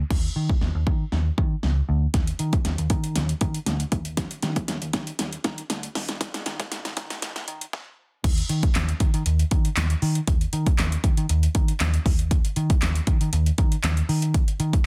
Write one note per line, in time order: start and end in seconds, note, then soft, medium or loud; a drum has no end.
0.11 0.27 D#2 loud
0.11 kick loud
0.11 snare medium
0.11 crash medium
0.36 0.52 D#3 loud
0.49 kick medium
0.61 0.70 D#2 loud
0.61 snare medium
0.75 0.83 D#2 medium
0.87 1.03 D#3 medium
0.87 kick medium
1.12 1.29 D#2 loud
1.12 snare medium
1.38 1.54 D#3 medium
1.38 kick medium
1.63 1.80 C#2 medium
1.63 snare medium
1.89 2.05 D2 medium
2.14 2.31 D#2 loud
2.14 kick loud
2.14 snare medium
2.14 closed hi-hat loud
2.27 closed hi-hat medium
2.39 2.56 D#3 medium
2.39 closed hi-hat medium
2.53 kick loud
2.53 closed hi-hat medium
2.65 2.74 D#2 loud
2.65 snare medium
2.65 closed hi-hat medium
2.78 2.86 D#2 medium
2.78 closed hi-hat medium
2.90 3.17 D#3 loud
2.90 kick medium
2.90 closed hi-hat medium
3.04 closed hi-hat medium
3.16 3.32 D#2 loud
3.16 snare medium
3.16 closed hi-hat loud
3.29 closed hi-hat soft
3.41 3.58 D#3 loud
3.41 kick medium
3.41 closed hi-hat medium
3.54 closed hi-hat medium
3.66 3.83 D2 loud
3.66 snare medium
3.66 closed hi-hat medium
3.80 closed hi-hat medium
3.92 4.25 D#2 medium
3.92 kick medium
3.92 closed hi-hat medium
4.05 closed hi-hat medium
4.17 kick loud
4.17 snare medium
4.17 closed hi-hat loud
4.31 closed hi-hat medium
4.42 4.59 D#3 loud
4.42 snare medium
4.42 closed hi-hat medium
4.56 kick medium
4.56 closed hi-hat medium
4.68 4.77 D#2 loud
4.68 snare medium
4.68 closed hi-hat medium
4.82 4.89 D#2 medium
4.82 closed hi-hat medium
4.93 5.10 D#3 medium
4.93 kick medium
4.93 snare medium
4.93 closed hi-hat medium
5.07 closed hi-hat medium
5.19 5.36 D#2 loud
5.19 snare loud
5.19 closed hi-hat loud
5.33 closed hi-hat medium
5.44 5.61 D#3 loud
5.44 kick medium
5.44 snare medium
5.44 closed hi-hat medium
5.58 closed hi-hat medium
5.70 5.86 D2 loud
5.70 snare loud
5.70 closed hi-hat medium
5.83 closed hi-hat medium
5.95 6.28 D#2 medium
5.95 snare medium
5.95 open hi-hat medium
6.08 snare loud
6.08 closed hi-hat medium
6.21 kick loud
6.21 snare loud
6.21 closed hi-hat loud
6.34 snare loud
6.34 closed hi-hat medium
6.46 6.63 D#3 loud
6.46 snare loud
6.46 closed hi-hat medium
6.60 kick medium
6.60 snare loud
6.60 closed hi-hat medium
6.72 6.80 D#2 loud
6.72 snare loud
6.72 closed hi-hat medium
6.85 6.93 D#2 medium
6.85 snare loud
6.85 closed hi-hat medium
6.97 7.13 D#3 loud
6.97 kick medium
6.97 snare loud
6.97 closed hi-hat medium
7.10 snare loud
7.10 closed hi-hat medium
7.22 7.39 D#2 loud
7.22 snare loud
7.22 closed hi-hat loud
7.36 snare loud
7.36 closed hi-hat soft
7.48 7.64 D#3 loud
7.48 closed hi-hat medium
7.61 closed hi-hat medium
7.73 kick loud
7.73 snare medium
8.24 8.41 D#2 loud
8.24 kick loud
8.24 closed hi-hat loud
8.24 crash loud
8.38 closed hi-hat medium
8.49 8.66 D#3 loud
8.49 closed hi-hat medium
8.63 kick medium
8.63 closed hi-hat medium
8.75 8.91 D#2 loud
8.75 snare loud
8.75 clap loud
8.75 closed hi-hat medium
8.89 closed hi-hat medium
9.00 9.09 D#3 loud
9.00 kick medium
9.00 closed hi-hat medium
9.14 9.22 D#3 loud
9.14 closed hi-hat medium
9.26 9.42 D#2 loud
9.26 closed hi-hat loud
9.39 closed hi-hat soft
9.51 9.68 D#3 loud
9.51 kick loud
9.51 closed hi-hat medium
9.65 closed hi-hat medium
9.77 9.93 D#2 loud
9.77 snare loud
9.77 clap loud
9.77 closed hi-hat loud
9.90 closed hi-hat medium
10.02 10.19 D#3 loud
10.02 open hi-hat medium
10.15 closed hi-hat medium
10.27 10.44 D#2 loud
10.27 kick loud
10.27 closed hi-hat loud
10.41 closed hi-hat medium
10.53 10.70 D#3 medium
10.53 closed hi-hat medium
10.66 kick loud
10.66 closed hi-hat medium
10.78 10.95 D#2 loud
10.78 snare loud
10.78 clap loud
10.78 closed hi-hat medium
10.92 closed hi-hat medium
11.04 11.13 D#3 loud
11.04 kick medium
11.04 closed hi-hat medium
11.17 11.25 D#3 medium
11.17 closed hi-hat medium
11.29 11.46 D#2 loud
11.29 closed hi-hat loud
11.43 closed hi-hat soft
11.55 11.71 D#3 loud
11.55 kick medium
11.55 closed hi-hat medium
11.68 closed hi-hat medium
11.80 11.97 D#2 loud
11.80 snare medium
11.80 clap loud
11.80 closed hi-hat medium
11.94 closed hi-hat medium
12.06 12.39 D#2 loud
12.06 kick medium
12.06 open hi-hat medium
12.19 closed hi-hat medium
12.31 kick loud
12.31 closed hi-hat loud
12.45 closed hi-hat medium
12.56 12.73 D#3 loud
12.56 closed hi-hat medium
12.70 kick loud
12.70 closed hi-hat medium
12.82 12.98 D#2 loud
12.82 snare loud
12.82 clap loud
12.82 closed hi-hat medium
12.95 closed hi-hat medium
13.07 13.16 D#3 loud
13.07 kick medium
13.07 closed hi-hat medium
13.21 13.29 D#3 medium
13.21 closed hi-hat medium
13.33 13.49 D#2 loud
13.33 closed hi-hat loud
13.46 closed hi-hat medium
13.58 13.75 D#3 loud
13.58 kick medium
13.58 closed hi-hat medium
13.72 closed hi-hat medium
13.84 14.00 D#2 loud
13.84 snare medium
13.84 clap loud
13.84 closed hi-hat medium
13.97 closed hi-hat medium
14.09 14.42 D#3 loud
14.09 open hi-hat medium
14.22 closed hi-hat medium
14.34 kick loud
14.34 closed hi-hat loud
14.48 closed hi-hat medium
14.60 14.76 D#3 loud
14.60 closed hi-hat medium
14.73 kick loud
14.73 closed hi-hat medium